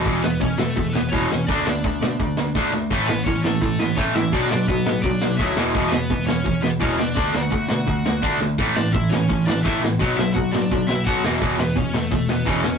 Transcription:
<<
  \new Staff \with { instrumentName = "Overdriven electric guitar" } { \time 4/4 \key a \major \tempo 4 = 169 << { r8 b'8 cis''8 a'8.~ a'32 a'32 b'8 cis''4 | d''2. r4 | r8 b'8 cis''8 a'4 b'8 cis''8 e''8 | d''8 d''8 b'4 d''4 e''8. r16 |
r8 b'4 cis''4 b'8 cis''8 d''8~ | d''8. fis''16 fis''8 fis''2 r8 | r8 d''8 e''8 cis''4 d''8 e''8 r8 | r8 e''8 fis''8 d''4 e''8 fis''8 r8 |
r8 b'8 cis''8 a'4 b'8 cis''4 | } \\ { r8 b8 cis'8 a4 b8 cis'4 | d'2. r4 | r8 b8 cis'8 a4 b8 cis'8 e'8 | d'8 d'8 b4 d'4 e'8. r16 |
r8 b4 cis'4 b8 cis'8 d'8~ | d'8. fis'16 fis'8 fis'2 r8 | r8 d'8 e'8 cis'4 d'8 e'8 r8 | r8 e'8 fis'8 d'4 e'8 fis'8 r8 |
r8 b8 cis'8 a4 b8 cis'4 | } >> }
  \new Staff \with { instrumentName = "Distorted electric guitar" } { \clef bass \time 4/4 \key a \major <e, b, e>8 <e, b,>8 <e, b,>8 <e, b,>8 <e, b,>8 <e, b,>8 <e, b, e>8 <e, b,>8 | <d a d'>8 <d a>8 <d a>8 <d a>8 <d a>8 <d a>8 <d a d'>8 <d a>8 | <a, e a>8 <a, e>8 <a, e>8 <a, e>8 <a, e>8 <a, e>8 <a, e a>8 <a, e>8 | <b, fis b>8 <b, fis>8 <b, fis>8 <b, fis>8 <b, fis>8 <b, fis>8 <b, fis b>8 <e, b, e>8 |
<e, b, e>8 <e, b,>8 <e, b,>8 <e, b,>8 <e, b,>8 <e, b,>8 <e, b, e>8 <e, b,>8 | <d a d'>8 <d a>8 <d a>8 <d a>8 <d a>8 <d a>8 <d a d'>8 <d a>8 | <a, e a>8 <a, e>8 <a, e>8 <a, e>8 <a, e>8 <a, e>8 <a, e a>8 <a, e>8 | <b, fis b>8 <b, fis>8 <b, fis>8 <b, fis>8 <b, fis>8 <b, fis>8 <b, fis b>8 <e, b, e>8 |
<e, b, e>8 <e, b,>8 <e, b,>8 <e, b,>8 <e, b,>8 <e, b,>8 <e, b, e>8 <e, b,>8 | }
  \new Staff \with { instrumentName = "Picked electric bass" } { \clef bass \time 4/4 \key a \major e,,8 e,,8 e,,8 e,,8 e,,8 e,,8 e,,8 e,,8 | d,8 d,8 d,8 b,8 d,8 d,8 d,8 d,8 | a,,8 a,,8 a,,8 a,,8 a,,8 a,,8 a,,8 a,,8 | b,,8 b,,8 b,,8 a,8 b,,8 b,,8 d,8 e,,8 |
e,,8 e,,8 e,,8 e,,8 e,,8 e,,8 e,,8 e,,8 | d,8 d,8 d,8 b,8 d,8 d,8 d,8 d,8 | a,,8 a,,8 a,,8 a,,8 a,,8 a,,8 a,,8 a,,8 | b,,8 b,,8 b,,8 a,8 b,,8 b,,8 fis,8 e,,8 |
e,,8 e,,8 e,,8 e,,8 e,,8 e,,8 e,,8 e,,8 | }
  \new DrumStaff \with { instrumentName = "Drums" } \drummode { \time 4/4 <hho bd>8 sn8 <hho bd>8 sn8 <hho bd>8 sn8 <hho bd>8 sn8 | <hho bd>8 sn8 <hho bd>8 sn8 <hho bd>8 sn8 <hho bd>8 sn8 | <hho bd>8 sn8 <hho bd>8 sn8 <hho bd>8 sn8 <hho bd>8 sn8 | <hho bd>8 sn8 <hho bd>8 sn8 <hho bd>8 sn8 <hho bd>8 sn8 |
<hho bd>8 sn8 <hho bd>8 sn8 <hho bd>8 sn8 <hho bd>8 sn8 | <hho bd>8 sn8 <hho bd>8 sn8 <hho bd>8 sn8 <hho bd>8 sn8 | <hho bd>8 sn8 <hho bd>8 sn8 <hho bd>8 sn8 <hho bd>8 sn8 | <hho bd>8 sn8 <hho bd>8 sn8 <hho bd>8 sn8 <hho bd>8 sn8 |
<hho bd>8 sn8 <hho bd>8 sn8 <hho bd>8 sn8 <hho bd>8 sn8 | }
>>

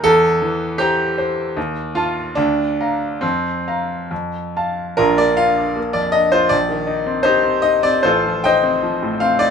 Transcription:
\new Staff \with { instrumentName = "Grand piano" } { \time 2/4 \key bes \major \tempo 4 = 77 << { a'4 g'8 r8 | r8 f'8 d'4 | c'4 r4 | <d' f' bes'>16 d''16 f''8. d''16 ees''16 c''16 |
d''4 <ees' g' c''>8 ees''16 d''16 | <f' a' c''>8 <c'' ees'' g''>4 f''16 d''16 | } \\ { e,8 e8 <c'' g'' bes''>8 c''8 | ees,8 <f'' a''>8 d,8 <f'' bes''>8 | f,8 <f'' bes''>8 f,8 <f'' a''>8 | bes,,16 bes16 f'16 d'16 bes16 f,16 d'16 f'16 |
bes,,16 ees16 ees'16 c'8 c'16 ees'16 c'16 | a,,16 f16 ees'16 c'16 f16 a,16 c'16 ees'16 | } >> }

